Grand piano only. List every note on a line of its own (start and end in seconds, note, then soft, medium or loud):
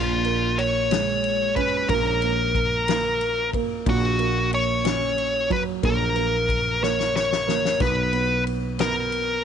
0.00 1.85 A#2 medium
0.25 1.53 A#3 soft
0.91 2.18 G#3 soft
1.57 2.84 C#4 medium
1.90 2.22 A#3 medium
2.23 2.87 A#3 soft
2.88 3.53 A#3 medium
3.54 3.86 A#3 medium
3.86 5.79 A#2 medium
4.19 5.47 A#3 soft
4.85 6.12 C#4 medium
5.50 6.78 F#3 medium
5.83 6.14 A#3 medium
6.16 6.80 A#3 soft
6.82 7.46 A#3 medium
7.47 7.79 A#3 medium
7.80 8.11 B3 medium
8.13 8.77 B3 medium
8.78 9.42 B3 medium